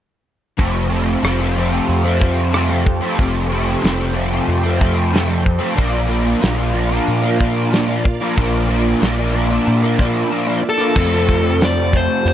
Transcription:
0.57 F1 F2 C3 F3 A3 C4 G4 A4 C5 F5, kick, open hi-hat
0.90 C3 F3 A3 C4
1.22 F1 F2 C3 F3 A3 C4, cross-stick, open hi-hat
1.39 F3 A3 C4
1.56 C3 F3 A3 C4
1.72 F3 A3 C4
1.89 F2, open hi-hat
2.04 F3 A3 C4
2.21 C3 F3 A3 C4, kick
2.52 F2 C3 F3 A3 C4, cross-stick, open hi-hat
2.69 F3 A3 C4
2.85 muted overdriven electric guitar stroke, kick
3.01 F3 A3 C4
3.18 F1 F2 C3 F3 A3 C4 G5, kick, open hi-hat
3.50 C3 F3 A3 C4
3.82 F1 F2 C3 F3 A3 C4, snare, open hi-hat
3.99 F3 A3 C4
4.14 C3 F3 A3 C4
4.30 F3 A3 C4
4.48 F2, open hi-hat
4.63 F3 A3 C4
4.79 C3 F3 A3 C4, kick
5.12 F2 C3 F3 A3 C4, snare, open hi-hat
5.29 F3 A3 C4
5.43 muted overdriven electric guitar stroke, kick
5.59 F3 A3 C4
5.74 A#1 A#2 F3 A#3 D4 F4 D5 F5, kick
5.79 open hi-hat
6.08 A#2 F3 A#3 D4
6.41 A#1 A#2 F3 A#3 D4, snare, open hi-hat
6.57 F3 A#3 D4
6.73 A#2 F3 A#3 D4
6.91 F3 A#3 D4
7.08 A#2, open hi-hat
7.22 F3 A#3 D4
7.38 A#2 F3 A#3 D4, kick
7.71 A#2 F3 A#3 D4, snare, open hi-hat
7.88 F3 A#3 D4
8.05 muted overdriven electric guitar stroke, kick
8.21 F3 A#3 D4
8.35 A#1 A#2 F3 A#3 D4 E5, kick, open hi-hat
8.69 A#2 F3 A#3 D4
9.02 A#1 A#2 F3 A#3 D4, snare, open hi-hat
9.18 F3 A#3 D4
9.33 A#2 F3 A#3 D4
9.50 F3 A#3 D4
9.67 A#2, open hi-hat
9.82 F3 A#3 D4
9.99 A#2 F3 A#3 D4, kick, snare
10.31 A#2 F3 A#3 D4
10.47 F3 A#3 D4
10.62 muted overdriven electric guitar stroke
10.69 A4
10.77 F3 A#3 D4
10.94 F2 C3 F3 A3 C4 F4 G4 A4 C5, kick, crash
11.29 kick, open hi-hat
11.60 snare, open hi-hat, tambourine
11.64 D5
11.93 C5, kick, open hi-hat
12.25 F2 C5, open hi-hat

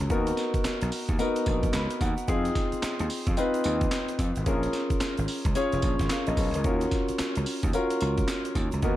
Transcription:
Already playing: C#4 F4 F#4 A#4
0.00 C#2
0.10 D#2 B3 D#4 F#4 A#4, kick, closed hi-hat, shaker
0.27 closed hi-hat, shaker
0.37 snare, closed hi-hat, tambourine
0.54 muted slap bass stroke, kick, closed hi-hat, shaker
0.65 muted slap bass stroke, snare, clap, closed hi-hat, tambourine, shaker
0.81 B1, closed hi-hat, shaker
0.92 open hi-hat, tambourine
1.09 D#2, kick, closed hi-hat, shaker
1.19 B3 D#4 F#4 A#4, closed hi-hat, tambourine, shaker
1.36 closed hi-hat, shaker
1.46 A#1, kick, closed hi-hat, tambourine
1.63 kick, closed hi-hat, shaker
1.73 C#2 B5, snare, clap, closed hi-hat, tambourine, shaker
1.90 closed hi-hat, shaker
2.01 D#2 F#5, kick, closed hi-hat, tambourine, shaker
2.18 closed hi-hat, shaker
2.28 F2 C4 D#4 F4 G#4, kick, closed hi-hat, shaker
2.45 closed hi-hat, shaker
2.55 kick, snare, closed hi-hat, tambourine
2.72 muted slap bass stroke, closed hi-hat, shaker
2.83 muted slap bass stroke, snare, clap, closed hi-hat, tambourine, shaker
2.99 D#2, closed hi-hat, shaker
3.10 open hi-hat, tambourine
3.27 F2, kick, closed hi-hat, shaker
3.37 C4 D#4 F4 B4, closed hi-hat, tambourine, shaker
3.54 closed hi-hat, shaker
3.64 D#2, closed hi-hat, tambourine
3.81 kick, closed hi-hat, shaker
3.91 snare, clap, closed hi-hat, tambourine, shaker
4.08 closed hi-hat, shaker
4.19 F2, kick, closed hi-hat, tambourine, shaker
4.36 G#1, closed hi-hat, shaker
4.46 A#1 C#4 F4 G#4 A#4, kick, closed hi-hat, shaker
4.63 closed hi-hat, shaker
4.73 snare, closed hi-hat, tambourine
4.90 muted slap bass stroke, kick, closed hi-hat, shaker
5.01 muted slap bass stroke, snare, clap, closed hi-hat, tambourine, shaker
5.17 G#1, closed hi-hat, shaker
5.28 open hi-hat, tambourine
5.45 C#2, kick, closed hi-hat, shaker
5.55 C#4 F4 G#4 C#5, closed hi-hat, tambourine, shaker
5.72 F1, closed hi-hat, shaker
5.82 A#1, kick, closed hi-hat, tambourine
5.99 G#1, kick, snare, closed hi-hat, shaker
6.10 A#4 F5, snare, clap, closed hi-hat, tambourine, shaker
6.27 A#1 A#4 D#5, closed hi-hat, shaker
6.37 B1 G#4 C#5, kick, open hi-hat, tambourine, shaker
6.54 C#2 F4 A#4, closed hi-hat, shaker
6.64 D#2 C#4 F4 F#4 A#4, kick, closed hi-hat, shaker
6.81 closed hi-hat, shaker
6.91 kick, snare, closed hi-hat, tambourine
7.09 muted slap bass stroke, closed hi-hat, shaker
7.19 muted slap bass stroke, snare, clap, closed hi-hat, tambourine, shaker
7.36 C#2, closed hi-hat, shaker
7.46 open hi-hat, tambourine
7.63 D#2, kick, closed hi-hat, shaker
7.73 C#4 F4 F#4 A#4, closed hi-hat, tambourine, shaker
7.90 closed hi-hat, shaker
8.01 C#2, closed hi-hat, tambourine
8.18 kick, closed hi-hat, shaker
8.28 snare, clap, closed hi-hat, tambourine, shaker
8.45 closed hi-hat, shaker
8.55 D#2, kick, closed hi-hat, tambourine, shaker
8.72 C#2, closed hi-hat, shaker
8.82 D#2 B3 D#4 F#4 A#4, kick, closed hi-hat, shaker

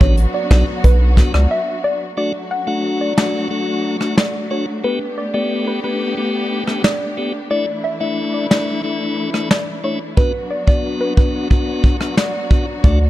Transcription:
Already playing: F#3 B3 D4 F#4
0.00 A1 B3 D4 F#4 C#5, kick
0.17 closed hi-hat
0.34 D5
0.51 B1 B3 D4 F#4 D5, kick, snare, closed hi-hat
0.84 B1 B4, kick, closed hi-hat
1.17 B3 D4 F#4, kick, snare, closed hi-hat
1.34 C#2 D5, cross-stick
1.51 E5
1.84 D5
2.17 F#3 A3 D4 F#4 D5
2.51 F#5
2.67 A3 D4 F#4 F#5
3.01 D5
3.17 A3 D4 F#4 D5, snare
3.50 A3 D4 F#4
4.00 A3 D4 F#4, cross-stick
4.17 D5, snare
4.50 A3 D4 F#4 C#5
4.84 A3 B3 G4 B4
5.18 D5
5.34 A3 B3 G4 D5
5.67 B4
5.84 A3 B3 G4 B4
6.17 A3 B3 G4
6.67 A3 B3 G4, cross-stick
6.84 D5, snare
7.17 A3 B3 G4
7.50 E3 A3 D4 E4 D5
7.84 E5
8.01 A3 D4 E4 E5
8.34 D5
8.51 A3 D4 E4 D5, snare
8.84 A3 D4 E4
9.34 A3 D4 E4, cross-stick
9.51 D5, snare
9.84 A3 D4 E4 C#5
10.17 F#3 B3 D4 F#4 B4, kick
10.51 D5
10.67 B3 D4 F#4 D5, kick
11.01 B4
11.17 B3 D4 F#4 B4, kick
11.50 B3 D4 F#4, kick
11.84 kick
12.00 B3 D4 F#4, cross-stick
12.17 D5, snare
12.50 B3 D4 F#4, kick
12.84 D2 A3 D4 F#4 D5, kick

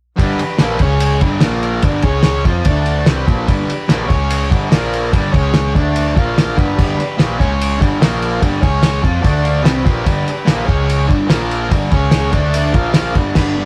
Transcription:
0.17 G1 G2 D3 G3 D4 G4 B4, kick, ride
0.39 muted fingered electric bass stroke, muted distorted electric guitar stroke, ride
0.58 A#1 A#2 F3 A#3, snare, ride
0.79 C#2 C#3 G#3 C#4 G#4 C#5, kick, ride
1.00 ride
1.20 G2 D3 G3, kick, ride
1.41 A#1 A#2 F3 A#3 F4 A#4, snare, ride
1.63 ride
1.82 G1 G2 D3 G3, kick, ride
2.02 C#2 C#3 G#3 C#4 G#4 C#5, kick, ride
2.23 snare, ride
2.45 F2 F3 C4 F4, kick, ride
2.65 D2 D3 A3 D4 A4 D5, kick, ride
2.86 ride
3.05 C2 C3 G3 C4 D4 G4 B4, snare, ride
3.27 A#1 A#2 F3 A#3, kick, ride
3.48 G1 G2 D3 G3, kick, ride
3.69 muted distorted electric guitar stroke, ride
3.88 A#1 A#2 F3 A#3, snare, ride
4.07 C#2 C#3 G#3 C#4 G#4 C#5, kick, ride
4.30 ride
4.50 G1 G2 D3 G3, kick, ride
4.71 A#1 A#2 F3 A#3 F4 A#4, snare, ride
4.93 ride
5.12 G1 G2 D3 G3, kick, ride
5.32 C#2 C#3 G#3 C#4 G#4 C#5, kick, ride
5.54 snare, ride
5.74 D2 D3 A3 D4 A4 D5, kick, ride
5.96 ride
6.15 A#1 A#2 F3 A#3 F4 A#4 F5, kick, ride
6.38 snare, ride
6.56 G1 G2 D3 G3 G4 B4 D5, kick, ride
6.75 G1 G2 D3 G3, kick, crash
6.97 muted distorted electric guitar stroke, muted fingered electric bass stroke, ride
7.17 A#1 A#2 F3 A#3, snare, ride
7.38 C#2 C#3 G#3 C#4 G#4 C#5, kick, ride
7.61 ride
7.78 G1 G2 D3 G3, kick, ride
8.00 A#1 A#2 F3 A#3 F4 A#4, snare, ride
8.22 ride
8.40 G1 G2 D3 G3, kick, ride
8.61 C#2 C#3 G#3 C#4 G#4 C#5, kick, ride
8.83 snare, ride
9.03 F2 F3 C4 F4, kick, ride
9.21 D2 D3 A3 D4 A4 D5, kick, ride
9.44 F5, ride
9.62 C2 C3 G3 C4 D4 G4 B4 G5, snare, ride
9.84 A#1 A#2 F3 A#3, kick, ride
10.04 G1 G2 D3 G3, kick, ride
10.25 muted distorted electric guitar stroke, muted fingered electric bass stroke, ride
10.45 A#1 A#2 F3 A#3, snare, ride
10.66 C#2 C#3 G#3 C#4 G#4 C#5, kick, ride
10.90 ride
11.08 G2 D3 G3, kick, ride
11.27 A#1 A#2 F3 A#3 F4 A#4, snare, ride
11.51 ride
11.69 G1 G2 D3 G3, kick, ride
11.91 C#2 C#3 G#3 C#4 G#4 C#5, kick, ride
12.11 snare, ride
12.31 D2 D3 A3 D4 A4, kick, ride
12.36 D5
12.54 ride
12.73 A#1 A#2 F3 A#3 F4 A#4 F5, kick, ride
12.94 snare, ride
13.14 G1 G2 D3 G3, kick, ride
13.35 G1 G2 D3 G3 G4 B4 D5, kick, snare, crash
13.57 G2 D3 G3

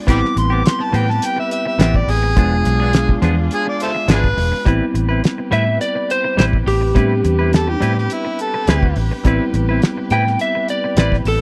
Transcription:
0.07 A1 E3 G3 B3 C4 E4 G4 B4 G5 B5 D6, kick, closed hi-hat
0.25 snare
0.36 A1 C6, muted clean electric guitar stroke, closed hi-hat
0.50 B3 C4 G4 D6
0.64 C6, muted clean electric guitar stroke, snare, closed hi-hat
0.79 muted clean electric guitar stroke
0.83 A5
0.92 A2 E3 B3 C4 G4 G5, closed hi-hat
1.08 A5, muted clean electric guitar stroke, snare
1.22 G5, closed hi-hat
1.36 E5, muted clean electric guitar stroke
1.51 E5, closed hi-hat
1.65 E5, muted clean electric guitar stroke
1.79 A1 E3 B3 C4 G4 E5, snare, closed hi-hat
1.94 D5, kick
2.08 A1 G#4, muted clean electric guitar stroke, open hi-hat
2.23 muted clean electric guitar stroke
2.36 E1 F3 G#3 B3 D4 F4 G#4, kick, closed hi-hat
2.65 B1, muted clean electric guitar stroke, snare, closed hi-hat
2.80 B3 D4 G#4
2.93 muted clean electric guitar stroke, snare, closed hi-hat
3.09 muted clean electric guitar stroke, kick
3.22 E2 F3 B3 D4 G#4, closed hi-hat
3.37 muted clean electric guitar stroke
3.51 G#4, closed hi-hat
3.66 D5, muted clean electric guitar stroke
3.80 A4 C5 E5, closed hi-hat
3.95 muted clean electric guitar stroke
4.08 G#1 F3 B3 D4 E4 G#4 B4, snare, closed hi-hat
4.24 kick
4.37 E1, muted clean electric guitar stroke, open hi-hat
4.52 muted clean electric guitar stroke, snare
4.65 A1 G3 B3 C4 E4 G4 B4, kick, closed hi-hat
4.94 A1, muted clean electric guitar stroke, closed hi-hat
5.09 C4 E4 B4
5.23 muted clean electric guitar stroke, snare, closed hi-hat
5.38 muted clean electric guitar stroke
5.51 A2 G3 C4 E4 B4 E5, closed hi-hat
5.66 muted clean electric guitar stroke
5.81 D5, closed hi-hat
5.95 muted clean electric guitar stroke
6.10 C5, closed hi-hat
6.24 muted clean electric guitar stroke
6.37 A1 G3 C4 E4 B4 C5, snare, closed hi-hat
6.53 kick
6.66 A1 G4, muted clean electric guitar stroke, snare, open hi-hat
6.81 muted clean electric guitar stroke
6.95 A2 G3 B3 C4 D4 E4 B4, kick, closed hi-hat
7.24 E2, muted clean electric guitar stroke, closed hi-hat
7.39 C4 E4 B4
7.53 A4, muted clean electric guitar stroke, snare, closed hi-hat
7.67 G4, muted clean electric guitar stroke
7.80 A2 G3 C4 E4 B4, closed hi-hat
7.96 G4, muted clean electric guitar stroke, snare
8.10 E4, closed hi-hat
8.25 muted clean electric guitar stroke
8.39 A4, closed hi-hat
8.54 muted clean electric guitar stroke
8.67 D2 G3 C4 E4 B4, snare, closed hi-hat
8.83 kick
8.96 A1, muted clean electric guitar stroke, open hi-hat
9.11 muted clean electric guitar stroke
9.24 A1 G3 B3 C4 E4 B4, kick, closed hi-hat
9.54 A1, muted clean electric guitar stroke, closed hi-hat
9.69 C4 E4 B4
9.82 snare, closed hi-hat
9.97 muted clean electric guitar stroke
10.10 A2 G3 C4 E4 B4 G5, closed hi-hat
10.27 muted clean electric guitar stroke, snare
10.39 E5, closed hi-hat
10.55 muted clean electric guitar stroke
10.68 D5, closed hi-hat
10.84 muted clean electric guitar stroke
10.97 A1 G3 C4 E4 B4 D5, snare, closed hi-hat
11.12 kick, snare
11.25 A1 A4, muted clean electric guitar stroke, open hi-hat

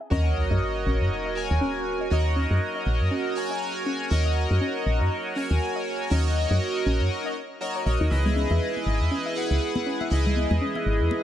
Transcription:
0.01 E5
0.10 D#2 C#4 F#4 A#4 C#5 D#5, sub drop
0.51 F#2 D#5
0.86 A#1 C#4
1.01 F#2
1.26 D#5
1.35 F#4 A#4 C#5 G#5
1.51 D#2
1.61 C#4
2.01 D#5
2.10 D#2 F#4 A#4 C#5 D#5
2.36 C#4
2.51 F#2
2.76 D#5
2.86 A#1
3.01 F#2
3.11 C#4
3.35 F#4 A#4 C#5 G#5
3.51 D#5
3.86 C#4
4.10 D#2 F#4 A#4 C#5 D#5
4.26 D#5
4.51 F#2
4.61 C#4
4.86 A#1
5.01 F#2 D#5
5.35 C#4 F#4 A#4 C#5 G#5
5.51 D#2
5.76 D#5
6.10 D#2 C#4 F#4 A#4 C#5 D#5
6.51 F#2 D#5
6.86 A#1 C#4
7.01 F#2
7.26 D#5
7.61 F#4 A#4 C#5 D#5
7.76 C#5
7.86 A#1 F#4 A#4 C#5 D#5
8.01 D#2 D#4
8.10 C#2 E4 G#4 B4 D#5
8.26 high conga, low conga
8.36 C#4, high conga
8.50 E2 E5, muted conga
8.76 muted conga
8.86 G#1
9.01 E2
9.11 C#4
9.26 E5
9.35 E4 G#4 B4 F#5
9.51 C#2
9.75 muted conga, high conga
9.86 C#4
10.01 E5, muted conga
10.10 C#2 E4 G#4 B4 D#5
10.26 low conga
10.36 high conga
10.51 E2, muted conga, low conga
10.61 C#4
10.75 E5, muted conga
10.86 G#1
11.00 E2
11.11 muted conga

